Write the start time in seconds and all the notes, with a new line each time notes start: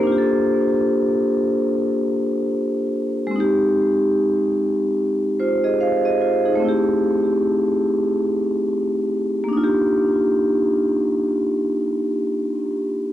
Already playing: G4 C5
0.00 A#3 D4
0.07 F4
0.12 G4
0.18 A4
3.27 G#3
3.31 C4
3.36 D#4
3.40 G4
5.39 F4 C5
5.64 G#4 D#5
5.80 C5 F5
6.05 G#4 D#5
6.21 F4 C5
6.45 D#4 G#4
6.55 A3
6.60 C4
6.64 E4
6.69 G4
9.44 A#3
9.49 D4
9.53 D#4
9.57 F4
9.64 G4